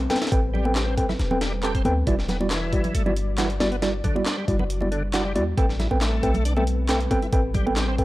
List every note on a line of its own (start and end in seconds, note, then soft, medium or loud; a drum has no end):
0.00 2.03 G3 medium
0.00 2.04 C4 medium
0.00 2.04 B4 medium
0.10 0.17 C4 medium
0.10 0.17 A4 medium
0.10 0.17 B4 medium
0.10 0.17 G5 loud
0.10 snare medium
0.10 closed hi-hat medium
0.10 high conga medium
0.16 snare medium
0.16 closed hi-hat medium
0.21 0.26 E4 medium
0.21 snare medium
0.21 closed hi-hat medium
0.27 snare medium
0.27 closed hi-hat medium
0.32 1.05 A1 loud
0.32 0.39 C4 medium
0.32 0.39 A4 medium
0.32 0.39 B4 medium
0.32 0.39 G5 loud
0.32 kick loud
0.32 closed hi-hat medium
0.54 0.65 G3 medium
0.54 low conga medium
0.65 0.72 C4 medium
0.65 0.72 A4 medium
0.65 0.72 B4 medium
0.65 0.72 G5 medium
0.65 high conga medium
0.75 0.86 G4 medium
0.75 snare loud
0.75 clap loud
0.75 closed hi-hat medium
0.87 0.95 C4 medium
0.97 1.04 C4 medium
0.97 1.04 A4 medium
0.97 1.04 B4 medium
0.97 1.04 G5 medium
0.97 kick loud
0.97 closed hi-hat medium
1.09 1.14 E4 medium
1.09 snare soft
1.09 low conga medium
1.19 1.82 E1 medium
1.19 snare soft
1.19 closed hi-hat medium
1.31 1.37 C4 medium
1.31 1.37 A4 medium
1.31 1.37 B4 medium
1.31 1.37 G5 medium
1.31 high conga medium
1.31 low conga medium
1.41 1.52 G3 medium
1.41 snare loud
1.41 closed hi-hat medium
1.63 1.70 C4 medium
1.63 1.74 G4 medium
1.63 1.70 A4 medium
1.63 1.70 B4 medium
1.63 1.70 A5 medium
1.63 clap loud
1.63 closed hi-hat soft
1.75 1.82 C4 medium
1.75 kick medium
1.75 closed hi-hat medium
1.85 2.03 D2 medium
1.85 1.92 C4 medium
1.85 1.92 A4 medium
1.85 1.92 B4 medium
1.85 1.92 G5 loud
1.85 closed hi-hat medium
1.85 high conga medium
2.06 2.80 E1 loud
2.06 2.15 E3 medium
2.06 8.04 G3 medium
2.06 2.14 G3 medium
2.06 2.14 E4 medium
2.06 5.54 F#4 medium
2.06 2.14 F#4 medium
2.06 5.54 D5 medium
2.06 2.14 D5 medium
2.06 kick loud
2.06 closed hi-hat medium
2.19 snare soft
2.29 2.37 B3 medium
2.29 snare soft
2.29 closed hi-hat medium
2.29 low conga medium
2.40 2.47 G3 medium
2.40 2.47 E4 medium
2.40 2.47 F#4 medium
2.40 2.47 D5 medium
2.40 high conga medium
2.51 2.94 E3 medium
2.51 snare loud
2.51 clap loud
2.51 closed hi-hat medium
2.73 2.80 G3 medium
2.73 2.80 E4 medium
2.73 2.80 F#4 medium
2.73 2.80 D5 medium
2.73 kick medium
2.73 closed hi-hat medium
2.84 closed hi-hat soft
2.84 low conga loud
2.94 4.01 G1 medium
2.94 3.03 A3 medium
2.94 closed hi-hat medium
3.06 3.14 E3 medium
3.06 3.12 G3 medium
3.06 3.12 E4 medium
3.06 3.12 F#4 medium
3.06 3.12 D5 medium
3.06 high conga medium
3.06 low conga medium
3.17 closed hi-hat medium
3.38 3.49 E3 medium
3.38 3.45 G3 medium
3.38 3.45 E4 medium
3.38 3.45 F#4 medium
3.38 3.45 F#5 medium
3.38 snare loud
3.38 clap loud
3.38 closed hi-hat medium
3.50 closed hi-hat soft
3.60 3.67 G3 medium
3.60 3.67 E4 medium
3.60 3.67 F#4 medium
3.60 3.67 D5 loud
3.60 snare loud
3.60 closed hi-hat medium
3.60 high conga medium
3.72 3.76 B3 medium
3.72 closed hi-hat soft
3.82 3.89 G3 medium
3.82 3.89 E4 medium
3.82 3.89 F#4 medium
3.82 3.89 D5 loud
3.82 snare loud
3.82 closed hi-hat medium
4.04 4.15 D3 medium
4.04 kick medium
4.04 closed hi-hat medium
4.04 low conga medium
4.16 4.22 G3 medium
4.16 4.22 E4 medium
4.16 4.22 F#4 medium
4.16 4.22 D5 medium
4.16 high conga medium
4.26 4.36 D4 medium
4.26 snare loud
4.26 clap loud
4.26 closed hi-hat medium
4.38 4.45 G3 medium
4.48 5.37 F#1 medium
4.48 4.55 G3 medium
4.48 4.55 E4 medium
4.48 4.55 F#4 medium
4.48 4.55 D5 medium
4.48 kick loud
4.48 closed hi-hat medium
4.59 4.64 B3 medium
4.59 low conga loud
4.70 closed hi-hat medium
4.81 4.88 G3 medium
4.81 4.88 E4 medium
4.81 4.88 F#4 medium
4.81 4.88 D5 medium
4.81 high conga medium
4.81 low conga medium
4.92 5.03 D3 medium
4.92 closed hi-hat medium
5.14 5.21 G3 medium
5.14 5.24 D4 medium
5.14 5.21 E4 medium
5.14 5.21 F#4 medium
5.14 5.21 F#5 loud
5.14 snare loud
5.14 clap loud
5.14 closed hi-hat medium
5.25 5.32 G3 medium
5.36 5.53 E2 medium
5.36 5.42 G3 loud
5.36 5.42 E4 medium
5.36 5.43 F#4 medium
5.36 5.42 D5 loud
5.36 closed hi-hat medium
5.36 high conga medium
5.57 5.87 A1 medium
5.57 5.66 A3 medium
5.57 5.64 C4 medium
5.57 8.04 C4 medium
5.57 5.64 A4 medium
5.57 5.64 B4 medium
5.57 8.04 B4 medium
5.57 5.64 G5 loud
5.57 kick loud
5.57 closed hi-hat medium
5.69 snare soft
5.79 5.88 E4 medium
5.79 snare soft
5.79 closed hi-hat medium
5.79 low conga medium
5.91 6.20 A1 medium
5.91 5.97 C4 medium
5.91 5.97 A4 medium
5.91 5.97 B4 medium
5.91 5.97 G5 medium
5.91 high conga medium
6.01 6.44 A3 medium
6.01 snare loud
6.01 clap loud
6.01 closed hi-hat medium
6.23 7.07 B1 medium
6.23 6.30 C4 medium
6.23 6.30 A4 medium
6.23 6.30 B4 medium
6.23 6.30 G5 medium
6.23 kick loud
6.23 closed hi-hat medium
6.34 closed hi-hat soft
6.34 low conga loud
6.45 6.53 D4 medium
6.45 closed hi-hat medium
6.57 6.64 A3 medium
6.57 6.63 C4 medium
6.57 6.63 A4 medium
6.57 6.63 B4 medium
6.57 6.63 G5 medium
6.57 high conga medium
6.57 low conga medium
6.67 closed hi-hat medium
6.89 7.00 A3 medium
6.89 6.96 C4 medium
6.89 6.96 A4 medium
6.89 6.96 B4 medium
6.89 6.96 G5 loud
6.89 snare loud
6.89 clap loud
6.89 closed hi-hat medium
7.00 closed hi-hat soft
7.11 7.18 C4 loud
7.11 7.18 A4 medium
7.11 7.18 B4 medium
7.11 7.18 G5 loud
7.11 kick medium
7.11 closed hi-hat medium
7.11 high conga medium
7.22 7.27 E4 medium
7.22 closed hi-hat soft
7.33 8.04 A1 loud
7.33 7.40 C4 medium
7.33 7.40 A4 medium
7.33 7.40 B4 medium
7.33 7.40 G5 loud
7.33 kick loud
7.33 closed hi-hat medium
7.54 7.65 G3 medium
7.54 kick medium
7.54 closed hi-hat medium
7.54 low conga medium
7.66 7.72 C4 medium
7.66 7.72 A4 medium
7.66 7.72 B4 medium
7.66 7.72 G5 medium
7.66 high conga loud
7.76 7.87 G4 medium
7.76 snare loud
7.76 clap loud
7.76 closed hi-hat medium
7.88 7.95 C4 medium
7.98 8.04 C4 medium
7.98 8.04 A4 medium
7.98 8.04 B4 medium
7.98 8.04 G5 medium
7.98 kick medium
7.98 closed hi-hat medium